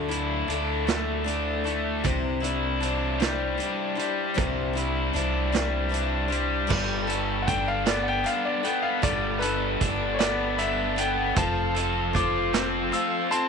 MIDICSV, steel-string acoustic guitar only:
0, 0, Header, 1, 2, 480
1, 0, Start_track
1, 0, Key_signature, 1, "major"
1, 0, Tempo, 777202
1, 1265, Time_signature, 6, 3, 24, 8
1, 8328, End_track
2, 0, Start_track
2, 0, Title_t, "Steel-string acoustic guitar"
2, 0, Program_c, 0, 25
2, 52, Note_on_c, 0, 69, 64
2, 54, Note_on_c, 0, 64, 55
2, 59, Note_on_c, 0, 62, 54
2, 64, Note_on_c, 0, 57, 50
2, 289, Note_off_c, 0, 57, 0
2, 296, Note_on_c, 0, 57, 65
2, 298, Note_off_c, 0, 62, 0
2, 298, Note_off_c, 0, 69, 0
2, 300, Note_off_c, 0, 64, 0
2, 306, Note_on_c, 0, 62, 67
2, 309, Note_on_c, 0, 64, 68
2, 313, Note_on_c, 0, 69, 70
2, 530, Note_off_c, 0, 69, 0
2, 536, Note_off_c, 0, 64, 0
2, 537, Note_off_c, 0, 57, 0
2, 537, Note_on_c, 0, 69, 75
2, 540, Note_off_c, 0, 62, 0
2, 543, Note_on_c, 0, 64, 68
2, 544, Note_on_c, 0, 57, 71
2, 547, Note_on_c, 0, 62, 63
2, 550, Note_on_c, 0, 54, 60
2, 553, Note_on_c, 0, 50, 65
2, 760, Note_off_c, 0, 57, 0
2, 767, Note_on_c, 0, 57, 64
2, 769, Note_off_c, 0, 62, 0
2, 772, Note_off_c, 0, 64, 0
2, 776, Note_off_c, 0, 69, 0
2, 777, Note_on_c, 0, 62, 71
2, 780, Note_on_c, 0, 64, 67
2, 784, Note_on_c, 0, 69, 74
2, 788, Note_off_c, 0, 54, 0
2, 789, Note_off_c, 0, 50, 0
2, 1006, Note_off_c, 0, 69, 0
2, 1014, Note_on_c, 0, 69, 59
2, 1015, Note_off_c, 0, 64, 0
2, 1016, Note_off_c, 0, 57, 0
2, 1016, Note_off_c, 0, 62, 0
2, 1023, Note_on_c, 0, 64, 54
2, 1024, Note_on_c, 0, 62, 51
2, 1026, Note_on_c, 0, 57, 42
2, 1257, Note_off_c, 0, 64, 0
2, 1258, Note_off_c, 0, 62, 0
2, 1258, Note_on_c, 0, 48, 81
2, 1259, Note_off_c, 0, 69, 0
2, 1259, Note_on_c, 0, 52, 94
2, 1263, Note_off_c, 0, 57, 0
2, 1264, Note_on_c, 0, 64, 89
2, 1265, Note_on_c, 0, 55, 88
2, 1265, Note_on_c, 0, 62, 80
2, 1265, Note_on_c, 0, 72, 90
2, 1477, Note_off_c, 0, 72, 0
2, 1484, Note_on_c, 0, 72, 66
2, 1487, Note_off_c, 0, 64, 0
2, 1493, Note_off_c, 0, 55, 0
2, 1493, Note_off_c, 0, 62, 0
2, 1494, Note_on_c, 0, 64, 54
2, 1500, Note_on_c, 0, 55, 56
2, 1501, Note_on_c, 0, 62, 59
2, 1502, Note_off_c, 0, 48, 0
2, 1502, Note_off_c, 0, 52, 0
2, 1724, Note_off_c, 0, 55, 0
2, 1732, Note_on_c, 0, 55, 62
2, 1733, Note_off_c, 0, 62, 0
2, 1735, Note_off_c, 0, 72, 0
2, 1737, Note_off_c, 0, 64, 0
2, 1740, Note_on_c, 0, 62, 69
2, 1745, Note_on_c, 0, 64, 71
2, 1749, Note_on_c, 0, 72, 72
2, 1967, Note_off_c, 0, 72, 0
2, 1968, Note_off_c, 0, 64, 0
2, 1970, Note_off_c, 0, 55, 0
2, 1971, Note_off_c, 0, 62, 0
2, 1975, Note_on_c, 0, 64, 68
2, 1975, Note_on_c, 0, 72, 77
2, 1978, Note_on_c, 0, 55, 65
2, 1979, Note_on_c, 0, 62, 71
2, 1981, Note_on_c, 0, 52, 59
2, 1985, Note_on_c, 0, 48, 67
2, 2201, Note_off_c, 0, 55, 0
2, 2205, Note_off_c, 0, 62, 0
2, 2208, Note_on_c, 0, 55, 65
2, 2212, Note_on_c, 0, 62, 72
2, 2213, Note_off_c, 0, 72, 0
2, 2214, Note_off_c, 0, 64, 0
2, 2220, Note_on_c, 0, 72, 71
2, 2221, Note_on_c, 0, 64, 69
2, 2223, Note_off_c, 0, 52, 0
2, 2225, Note_off_c, 0, 48, 0
2, 2434, Note_off_c, 0, 72, 0
2, 2440, Note_off_c, 0, 64, 0
2, 2441, Note_on_c, 0, 72, 59
2, 2444, Note_off_c, 0, 62, 0
2, 2447, Note_off_c, 0, 55, 0
2, 2448, Note_on_c, 0, 64, 53
2, 2451, Note_on_c, 0, 62, 55
2, 2455, Note_on_c, 0, 55, 50
2, 2680, Note_off_c, 0, 62, 0
2, 2682, Note_on_c, 0, 48, 85
2, 2683, Note_off_c, 0, 55, 0
2, 2684, Note_off_c, 0, 72, 0
2, 2687, Note_off_c, 0, 64, 0
2, 2687, Note_on_c, 0, 52, 87
2, 2687, Note_on_c, 0, 62, 80
2, 2690, Note_on_c, 0, 55, 84
2, 2692, Note_on_c, 0, 72, 89
2, 2695, Note_on_c, 0, 64, 91
2, 2916, Note_off_c, 0, 72, 0
2, 2923, Note_on_c, 0, 72, 58
2, 2927, Note_off_c, 0, 62, 0
2, 2929, Note_off_c, 0, 64, 0
2, 2933, Note_off_c, 0, 48, 0
2, 2934, Note_on_c, 0, 62, 54
2, 2935, Note_off_c, 0, 55, 0
2, 2936, Note_off_c, 0, 52, 0
2, 2936, Note_on_c, 0, 64, 55
2, 2942, Note_on_c, 0, 55, 50
2, 3163, Note_off_c, 0, 55, 0
2, 3167, Note_off_c, 0, 62, 0
2, 3170, Note_on_c, 0, 55, 59
2, 3171, Note_off_c, 0, 64, 0
2, 3174, Note_off_c, 0, 72, 0
2, 3174, Note_on_c, 0, 62, 65
2, 3179, Note_on_c, 0, 64, 73
2, 3183, Note_on_c, 0, 72, 76
2, 3404, Note_off_c, 0, 72, 0
2, 3409, Note_off_c, 0, 64, 0
2, 3411, Note_off_c, 0, 62, 0
2, 3411, Note_on_c, 0, 72, 73
2, 3416, Note_off_c, 0, 55, 0
2, 3417, Note_on_c, 0, 64, 71
2, 3419, Note_on_c, 0, 62, 65
2, 3423, Note_on_c, 0, 55, 60
2, 3424, Note_on_c, 0, 52, 63
2, 3427, Note_on_c, 0, 48, 68
2, 3631, Note_off_c, 0, 55, 0
2, 3638, Note_on_c, 0, 55, 66
2, 3639, Note_off_c, 0, 62, 0
2, 3646, Note_on_c, 0, 62, 68
2, 3647, Note_off_c, 0, 64, 0
2, 3649, Note_off_c, 0, 72, 0
2, 3655, Note_on_c, 0, 64, 76
2, 3657, Note_on_c, 0, 72, 68
2, 3665, Note_off_c, 0, 52, 0
2, 3666, Note_off_c, 0, 48, 0
2, 3872, Note_off_c, 0, 72, 0
2, 3879, Note_on_c, 0, 72, 61
2, 3881, Note_off_c, 0, 62, 0
2, 3881, Note_off_c, 0, 64, 0
2, 3884, Note_off_c, 0, 55, 0
2, 3888, Note_on_c, 0, 62, 47
2, 3889, Note_on_c, 0, 64, 52
2, 3891, Note_on_c, 0, 55, 41
2, 4112, Note_off_c, 0, 55, 0
2, 4118, Note_off_c, 0, 62, 0
2, 4120, Note_on_c, 0, 55, 81
2, 4125, Note_on_c, 0, 62, 85
2, 4130, Note_off_c, 0, 64, 0
2, 4131, Note_off_c, 0, 72, 0
2, 4132, Note_on_c, 0, 69, 89
2, 4134, Note_on_c, 0, 71, 86
2, 4360, Note_off_c, 0, 71, 0
2, 4368, Note_off_c, 0, 62, 0
2, 4368, Note_off_c, 0, 69, 0
2, 4368, Note_on_c, 0, 71, 66
2, 4372, Note_off_c, 0, 55, 0
2, 4375, Note_on_c, 0, 62, 55
2, 4375, Note_on_c, 0, 69, 57
2, 4614, Note_off_c, 0, 62, 0
2, 4614, Note_off_c, 0, 69, 0
2, 4615, Note_on_c, 0, 55, 61
2, 4616, Note_off_c, 0, 71, 0
2, 4621, Note_on_c, 0, 69, 66
2, 4622, Note_on_c, 0, 62, 61
2, 4630, Note_on_c, 0, 71, 63
2, 4844, Note_off_c, 0, 69, 0
2, 4847, Note_off_c, 0, 71, 0
2, 4851, Note_on_c, 0, 69, 62
2, 4853, Note_off_c, 0, 62, 0
2, 4854, Note_on_c, 0, 71, 69
2, 4856, Note_off_c, 0, 55, 0
2, 4861, Note_on_c, 0, 62, 60
2, 4864, Note_on_c, 0, 55, 61
2, 5082, Note_off_c, 0, 55, 0
2, 5085, Note_off_c, 0, 62, 0
2, 5089, Note_on_c, 0, 55, 60
2, 5093, Note_on_c, 0, 62, 56
2, 5096, Note_off_c, 0, 69, 0
2, 5100, Note_off_c, 0, 71, 0
2, 5103, Note_on_c, 0, 69, 60
2, 5107, Note_on_c, 0, 71, 67
2, 5323, Note_off_c, 0, 71, 0
2, 5329, Note_off_c, 0, 69, 0
2, 5331, Note_on_c, 0, 71, 50
2, 5337, Note_off_c, 0, 55, 0
2, 5337, Note_off_c, 0, 62, 0
2, 5337, Note_on_c, 0, 69, 53
2, 5344, Note_on_c, 0, 62, 42
2, 5570, Note_off_c, 0, 62, 0
2, 5571, Note_on_c, 0, 55, 74
2, 5572, Note_off_c, 0, 69, 0
2, 5577, Note_on_c, 0, 62, 74
2, 5578, Note_off_c, 0, 71, 0
2, 5580, Note_on_c, 0, 69, 74
2, 5585, Note_on_c, 0, 71, 72
2, 5801, Note_off_c, 0, 71, 0
2, 5808, Note_on_c, 0, 71, 52
2, 5810, Note_off_c, 0, 69, 0
2, 5817, Note_off_c, 0, 62, 0
2, 5818, Note_off_c, 0, 55, 0
2, 5818, Note_on_c, 0, 69, 55
2, 5824, Note_on_c, 0, 62, 48
2, 6056, Note_on_c, 0, 55, 59
2, 6057, Note_off_c, 0, 71, 0
2, 6058, Note_off_c, 0, 62, 0
2, 6061, Note_off_c, 0, 69, 0
2, 6065, Note_on_c, 0, 62, 55
2, 6071, Note_on_c, 0, 69, 56
2, 6074, Note_on_c, 0, 71, 69
2, 6285, Note_off_c, 0, 71, 0
2, 6288, Note_off_c, 0, 69, 0
2, 6291, Note_off_c, 0, 55, 0
2, 6291, Note_off_c, 0, 62, 0
2, 6292, Note_on_c, 0, 71, 77
2, 6295, Note_on_c, 0, 69, 59
2, 6298, Note_on_c, 0, 62, 62
2, 6299, Note_on_c, 0, 55, 54
2, 6527, Note_off_c, 0, 55, 0
2, 6533, Note_off_c, 0, 62, 0
2, 6535, Note_on_c, 0, 55, 60
2, 6536, Note_off_c, 0, 69, 0
2, 6538, Note_off_c, 0, 71, 0
2, 6540, Note_on_c, 0, 62, 64
2, 6544, Note_on_c, 0, 69, 64
2, 6547, Note_on_c, 0, 71, 69
2, 6762, Note_off_c, 0, 71, 0
2, 6770, Note_on_c, 0, 71, 51
2, 6776, Note_off_c, 0, 69, 0
2, 6780, Note_off_c, 0, 55, 0
2, 6782, Note_off_c, 0, 62, 0
2, 6783, Note_on_c, 0, 69, 49
2, 6792, Note_on_c, 0, 62, 41
2, 7016, Note_on_c, 0, 53, 72
2, 7017, Note_off_c, 0, 62, 0
2, 7017, Note_off_c, 0, 71, 0
2, 7019, Note_off_c, 0, 69, 0
2, 7020, Note_on_c, 0, 60, 73
2, 7021, Note_on_c, 0, 57, 84
2, 7023, Note_on_c, 0, 65, 81
2, 7026, Note_on_c, 0, 69, 72
2, 7247, Note_off_c, 0, 69, 0
2, 7255, Note_on_c, 0, 69, 54
2, 7257, Note_off_c, 0, 65, 0
2, 7260, Note_off_c, 0, 53, 0
2, 7260, Note_off_c, 0, 60, 0
2, 7263, Note_off_c, 0, 57, 0
2, 7265, Note_on_c, 0, 65, 49
2, 7268, Note_on_c, 0, 60, 43
2, 7493, Note_off_c, 0, 60, 0
2, 7493, Note_on_c, 0, 57, 54
2, 7499, Note_off_c, 0, 65, 0
2, 7499, Note_off_c, 0, 69, 0
2, 7500, Note_on_c, 0, 60, 61
2, 7506, Note_on_c, 0, 65, 60
2, 7514, Note_on_c, 0, 69, 69
2, 7733, Note_off_c, 0, 69, 0
2, 7737, Note_off_c, 0, 65, 0
2, 7738, Note_off_c, 0, 57, 0
2, 7740, Note_on_c, 0, 69, 68
2, 7742, Note_off_c, 0, 60, 0
2, 7744, Note_on_c, 0, 65, 62
2, 7750, Note_on_c, 0, 60, 63
2, 7751, Note_on_c, 0, 57, 56
2, 7753, Note_on_c, 0, 53, 58
2, 7972, Note_off_c, 0, 60, 0
2, 7974, Note_off_c, 0, 57, 0
2, 7980, Note_on_c, 0, 60, 65
2, 7981, Note_on_c, 0, 57, 62
2, 7982, Note_off_c, 0, 69, 0
2, 7984, Note_off_c, 0, 65, 0
2, 7989, Note_off_c, 0, 53, 0
2, 7990, Note_on_c, 0, 65, 68
2, 7993, Note_on_c, 0, 69, 64
2, 8210, Note_off_c, 0, 69, 0
2, 8218, Note_on_c, 0, 69, 50
2, 8221, Note_off_c, 0, 65, 0
2, 8222, Note_off_c, 0, 60, 0
2, 8223, Note_off_c, 0, 57, 0
2, 8228, Note_on_c, 0, 65, 49
2, 8231, Note_on_c, 0, 60, 41
2, 8328, Note_off_c, 0, 60, 0
2, 8328, Note_off_c, 0, 65, 0
2, 8328, Note_off_c, 0, 69, 0
2, 8328, End_track
0, 0, End_of_file